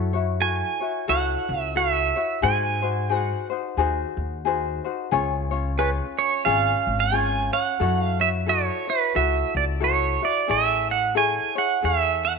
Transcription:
Already playing: F#2 E4 F#4 A4 C#5
0.13 E4 F#4 C#5
0.40 E4 F#4 A4 C#5 G#5
0.80 E4 F#4 C#5
1.08 C#2 E4 F#4 A4 C#5 F#5
1.49 C#2
1.61 E5
1.75 E4 F#4 A4 C#5 E5
2.16 E4 F#4 C#5
2.42 G#2 D#4 F#4 G#4 C5 G#5
2.82 D#4 F#4 C5
3.09 D#4 F#4 G#4 C5
3.15 F#5
3.50 D#4 F#4 C5
3.77 D#2 D#4 F#4 G#4 C5
4.17 D#2
4.45 D#4 F#4 G#4 C5
4.84 D#4 F#4 C5
5.11 C#2 C#4 F4 G#4 C#5
5.51 C#4 F4 C#5
5.78 C#4 F4 G#4 B4 C#5
6.18 C#5
6.45 G#1 C#4 F4 G#4 C#5 F5
6.87 G#1
7.00 G#5
7.12 C#4 F4 G#4 C#5
7.53 C#4 C#5 F#5
7.80 F#2 E4 F#4 A4 C#5
8.02 F5
8.19 E4 F#4 C#5 E5
8.46 E4 F#4 A4 C#5
8.87 E4 F#4 B4 C#5
9.15 C#2 E4 F#4 A4 E5
9.55 C#2 D5
9.80 E4 F#4 A4 C#5
10.21 E4 F#4 D5
10.47 A1 E4 G#4 A4 C#5 E5
10.91 F#5
11.15 E4 G#4 A4 C#5 G#5
11.55 E4 G#4 C#5 F#5
11.82 E2 E4 G#4 A4 C#5 E5
12.25 F#5

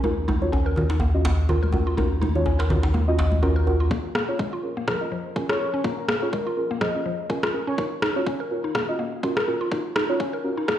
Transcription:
0.04 D#2 C#4 D#4 F4 F#4 A#4, high conga, djembe tone
0.28 D#4, high conga, djembe tone
0.42 C#4 F4 F#4 C#5, high conga
0.52 C#4, djembe tone
0.66 A#4
0.76 C#4 F4 F#4 A#4, djembe tone, low conga
0.90 D#4, djembe slap
1.00 A#3, djembe tone
1.14 C#4 F4 F#4 D#5
1.25 A#3, djembe slap, djembe tone
1.49 C#4 F4 F#4 A#4, djembe tone, low conga
1.63 A#4, high conga
1.72 C#4 F4 F#4 A#4, djembe tone, high conga
1.87 F4
1.97 C#4 D#4 F4 F#4 A#4, high conga, djembe tone
2.21 D#4, djembe tone, high conga
2.35 C#4 F4 F#4 C#5, high conga, low conga
2.46 C#4, djembe tone
2.59 A#4, djembe slap
2.70 C#4 F4 F#4 A#4, djembe tone, low conga
2.83 D#4, djembe slap
2.94 A#3, djembe tone, high conga
3.08 C#4 F4 F#4 D#5
3.18 A#3, djembe slap, djembe tone
3.32 high conga
3.42 C#4 F4 F#4 A#4, djembe tone
3.56 A#4
3.67 C#4 F4 F#4 A#4, djembe tone
3.80 F4
3.91 A#3 C#4 F4 G#4 A#4, kick
4.15 A#3, cross-stick
4.28 C#4 F4 G#4 C#5
4.39 G#3, kick
4.53 F4
4.63 A#1 C#4 F4 G#4 A#4
4.77 A#3
4.88 F3 A#4, kick, cross-stick
5.01 C#4 F4 G#4 D#5
5.12 F3
5.36 C#2 C#4 F4 G#4 A#4, kick
5.49 F4 C#5, cross-stick
5.60 A#1 C#4 F4 G#4 A#4
5.74 C#4
5.84 A#3 C#4 F4 G#4 A#4, kick
5.98 A#4
6.09 A#3, cross-stick
6.22 C#4 F4 G#4 C#5
6.33 G#3 A#4, kick
6.47 F4
6.57 A#1 C#4 F4 G#4 A#4
6.71 A#3
6.81 F3 D#5, kick, cross-stick
6.95 C#4 F4 G#4 D#5
7.05 C#2 F3
7.30 C#4 F4 G#4 A#4, kick
7.43 F4, cross-stick
7.54 C#4 F4 G#4 A#4
7.67 C#4 C#5
7.78 C#4 D#4 F4 F#4 A#4, kick
8.02 D#4, cross-stick
8.16 C#4 F4 F#4 C#5
8.27 C#4, kick
8.40 A#4
8.51 D#2 C#4 F4 F#4 A#4
8.64 D#4
8.75 A#3, kick, cross-stick
8.88 C#4 F4 F#4 D#5
8.99 A#3
9.23 F#2 C#4 F4 F#4 A#4, kick
9.37 A#4, cross-stick
9.47 D#2 C#4 F4 F#4 A#4
9.61 F4
9.71 C#4 D#4 F4 F#4 A#4, kick
9.96 D#4, cross-stick
10.09 C#4 F4 F#4 C#5
10.20 C#4, kick
10.33 A#4
10.44 D#2 C#4 F4 F#4 A#4
10.58 D#4
10.68 A#1 A#3, kick, cross-stick

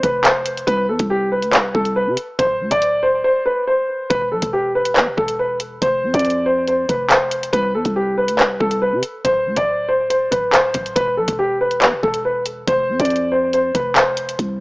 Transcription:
0.03 F1 B4, kick, closed hi-hat
0.25 C5, clap, closed hi-hat
0.46 closed hi-hat
0.57 closed hi-hat
0.67 C2 B4, kick, closed hi-hat
0.89 E2 A4
0.99 C2, kick, closed hi-hat
1.10 G4
1.32 B4
1.42 D2, closed hi-hat
1.53 clap, closed hi-hat
1.59 C2
1.74 C2 A4, kick
1.85 closed hi-hat
1.96 B4
2.07 C3
2.17 closed hi-hat
2.39 D1 C5, kick, closed hi-hat
2.60 D2
2.71 D1 D5, kick, closed hi-hat
2.82 closed hi-hat
3.03 C5
3.24 C5
3.46 B4
3.67 C5
4.10 E1 B4, kick, closed hi-hat
4.32 B1 A4
4.42 E1, kick, closed hi-hat
4.53 G4
4.75 B4
4.85 closed hi-hat
4.96 E2, clap, closed hi-hat
5.07 E1
5.17 E1 A4, kick
5.28 closed hi-hat
5.39 B4
5.60 closed hi-hat
5.82 F1 C5, kick, closed hi-hat
6.03 F2
6.14 F2 D5, kick, closed hi-hat
6.19 closed hi-hat
6.25 closed hi-hat
6.30 closed hi-hat
6.46 C5
6.68 C5, closed hi-hat
6.89 F1 B4, kick, closed hi-hat
7.10 C5, clap, closed hi-hat
7.31 closed hi-hat
7.43 closed hi-hat
7.53 C2 B4, kick, closed hi-hat
7.75 E2 A4
7.85 C2, kick, closed hi-hat
7.96 G4
8.18 B4
8.28 D2, closed hi-hat
8.39 clap, closed hi-hat
8.44 C2
8.60 C2 A4, kick
8.71 closed hi-hat
8.82 B4
8.92 C3
9.03 closed hi-hat
9.25 D1 C5, kick, closed hi-hat
9.46 D2
9.56 D1 D5, kick, closed hi-hat
9.89 C5
10.10 C5, closed hi-hat
10.31 D1 B4, kick, closed hi-hat
10.53 E1 C5, clap, closed hi-hat
10.64 D1
10.74 D1, kick, closed hi-hat
10.86 closed hi-hat
10.96 E1 B4, kick, closed hi-hat
11.17 B1 A4
11.28 E1, kick, closed hi-hat
11.39 G4
11.61 B4
11.71 closed hi-hat
11.82 E2, clap, closed hi-hat
11.93 E1
12.03 E1 A4, kick
12.14 closed hi-hat
12.25 B4
12.46 closed hi-hat
12.68 F1 C5, kick, closed hi-hat
12.89 F2
13.00 F2 D5, kick, closed hi-hat
13.05 closed hi-hat
13.10 closed hi-hat
13.16 closed hi-hat
13.32 C5
13.53 C5, closed hi-hat
13.75 F1 B4, kick, closed hi-hat
13.96 C5, clap, closed hi-hat
14.17 closed hi-hat
14.29 closed hi-hat
14.39 C2, kick, closed hi-hat

